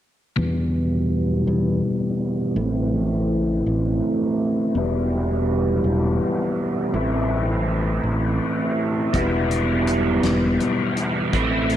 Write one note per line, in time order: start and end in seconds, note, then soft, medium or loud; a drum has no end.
0.36 2.54 E2 medium
0.36 1.43 E2 medium
0.36 2.54 B2 medium
0.36 2.56 E3 medium
0.36 2.55 G3 medium
0.36 2.55 B3 medium
0.36 2.57 E4 medium
1.47 1.81 E2 medium
2.55 3.62 A1 medium
2.55 4.73 A2 medium
2.55 4.76 E3 medium
2.55 4.74 A3 medium
2.55 4.74 C4 medium
2.55 4.77 E4 medium
3.66 4.00 A1 medium
4.75 5.81 E1 medium
4.75 6.93 E2 medium
4.75 6.93 B2 medium
4.75 6.94 E3 medium
4.75 6.94 G3 medium
4.75 6.94 B3 medium
4.75 6.95 E4 medium
5.84 6.18 E1 medium
6.93 8.00 A1 medium
6.93 9.11 A2 medium
6.93 9.14 E3 medium
6.93 9.12 A3 medium
6.93 9.13 C4 medium
6.93 9.15 E4 medium
8.04 8.38 A1 medium
9.13 10.20 E1 medium
9.13 11.31 E2 medium
9.13 11.32 B2 medium
9.13 11.34 E3 medium
9.13 11.32 G3 medium
9.13 11.32 B3 medium
9.13 11.36 E4 medium
9.13 kick medium
9.13 closed hi-hat medium
9.51 closed hi-hat medium
9.87 closed hi-hat medium
10.23 10.57 E1 medium
10.23 snare medium
10.23 closed hi-hat medium
10.60 closed hi-hat soft
10.97 closed hi-hat medium
11.33 11.77 A1 medium
11.33 11.77 A2 medium
11.33 11.77 E3 medium
11.33 11.77 A3 medium
11.33 11.77 C4 medium
11.33 11.77 E4 medium
11.33 kick medium
11.33 closed hi-hat medium
11.70 closed hi-hat medium